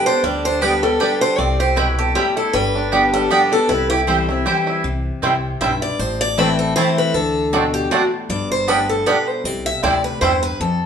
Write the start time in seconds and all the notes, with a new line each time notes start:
Already playing: G4
0.06 B3 D4 G4 C5
0.23 D2 D3 G3 D5
0.45 D4 C5
0.61 D3 G3 B3 G4 B4 D5 G5
0.83 G3 B3 G4 A4
1.00 D3 G3 B3 D4 G4 B4 D5 G5
1.21 D3 C5
1.38 C2 C3 C4 D5
1.60 G4 C5
1.76 B2 C4 E4 B4 C5 G5
1.99 G4 A4
2.15 A2 G3 C4 E4 G4 C5 G5
2.37 E4 A4
2.53 G1 G2 G3 B4
2.75 D4
2.92 D3 G3 B3 G4 D5 G5
3.14 G3 A4
3.30 D3 G3 B3 D4 G4 D5 G5
3.52 D3 B3 G4 A4
3.69 C2 C3 E4 B4
3.90 E4 G4
4.07 E3 G3 C4 E4 C5 G5
4.29 C4 E4
4.46 E3 G3 C4 E4 G4 C5 G5
4.67 E4
4.84 C2 C3
5.22 C2 C3 G3 C4 E4 C5 G5
5.61 B1 G2 G3 C4 E4 C5 E5 G5
5.82 D5
5.99 A1 A2 C5
6.21 D5
6.37 E3 A3 C4 E4 B4 C5 A5
6.59 A4
6.76 E3 A3 C4 E4 C5 A5
6.98 B4
7.14 D2 D3 A4
7.53 B2 A3 C4 D4 F#4 D5 A5
7.74 G4
7.91 A2 A3 C4 D4 F#4 D5 A5
8.29 G1 G2 D5
8.52 C5
8.68 A2 G3 B3 D4 G4 B4 D5 G5
8.89 A4
9.06 B2 G3 B3 D4 G4 B4 D5 G5
9.28 C5
9.44 C2 C3 D5
9.66 E5
9.83 D2 A2 G3 C4 E4 C5 D5 G5
10.04 B4
10.21 E2 G2 G3 C4 E4 C5 G5
10.43 B4
10.60 F2 A4